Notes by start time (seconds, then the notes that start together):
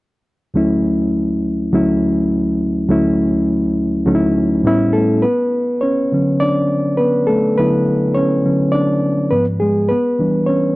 0.54 D2 F#3 A3 C#4 E4
1.72 D2 F#3 A3 C#4 E4
2.88 D2 F#3 A3 C#4 E4
4.06 D2 F#3 A3 C#4 D#4
4.15 E4
4.64 A2 G3 B3 C#4 E4
4.93 A3 A4
5.22 B3 B4
5.81 C#4 C#5
6.12 D3 F#3 C#4
6.40 D4 D5
6.97 B3 B4
7.27 A3 A4
7.58 D3 F#3 B3 E4 B4
8.15 C#4 C#5
8.45 D3 F#3 C#4
8.72 D4 D5
9.31 G#2 F3 B3 B4
9.60 G#3 G#4
9.89 B3 B4
10.19 E3 G3 D4
10.46 C#4 C#5